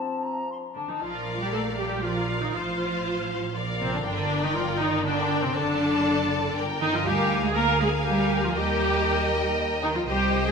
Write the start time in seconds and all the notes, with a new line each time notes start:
Already playing: F3 C4 A5
0.23 A#5
0.50 C6
0.74 D3 D4 A5
0.89 D#3 D#4
1.01 A#1 F3 F4 A#4 D5 F5
1.39 G3 G4
1.52 A3 A4
1.78 G3 G4
2.03 F3 F4 A#4 D5 F5
2.42 D#3 D#4
2.53 A1 F3 F4 C5 F5
3.55 A#1 A#4 D5 F5
3.81 C3 C4
3.93 D3 D4
4.04 G1 D3 D4 A#4 D5 G5
4.43 D#3 D#4
4.54 F3 F4
4.80 D#3 D#4
5.04 D3 D4 A#4 D5 G5
5.43 C3 C4
5.55 F#1 D3 D4 A4 D5 A5
6.55 G1 A#4 D5 G5
6.80 D#3 D#4 D#5
6.93 F3 F4
7.05 D2 G3 G4 A#4 F5 G#5
7.43 G#3 G#4
7.55 A#3 A#4 F5 G#5
7.80 G#3 G#4
8.06 G3 G4
8.43 F3 F4
8.55 D#2 G3 G4 A#4 D#5 G5
9.82 D#3 D#4
9.95 F3 F4
10.07 C2 G3 G4 C5 D#5 G5
10.46 G#3 G#4